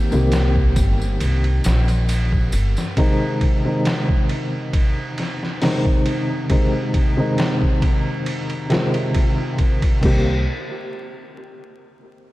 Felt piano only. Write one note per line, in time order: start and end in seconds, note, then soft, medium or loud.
0.00 0.11 D#3 medium
0.00 0.12 A#3 medium
0.00 0.13 C4 medium
0.00 0.14 G4 medium
0.11 2.92 D#3 medium
0.11 2.92 A#3 medium
0.11 2.93 C4 medium
0.11 2.93 G4 medium
2.97 3.59 C3 medium
2.97 3.59 D#3 medium
2.97 3.60 G#3 medium
2.97 3.60 D#4 loud
3.65 5.57 C3 medium
3.65 5.57 D#3 medium
3.65 5.58 G#3 medium
3.65 5.58 D#4 medium
5.61 6.45 C3 medium
5.61 6.45 D#3 medium
5.61 6.45 G#3 medium
5.61 6.46 D#4 medium
6.50 7.12 C3 medium
6.50 7.12 D#3 medium
6.50 7.12 G#3 medium
6.50 7.12 D#4 medium
7.17 8.66 C3 medium
7.17 8.66 D#3 medium
7.17 8.67 G#3 medium
7.17 8.67 D#4 medium
8.69 9.97 C3 medium
8.69 9.98 D#3 medium
8.69 9.98 G#3 medium
8.69 9.99 F4 loud
10.01 10.35 D#3 medium
10.01 10.36 A#3 medium
10.01 10.37 C4 medium
10.05 10.38 G4 loud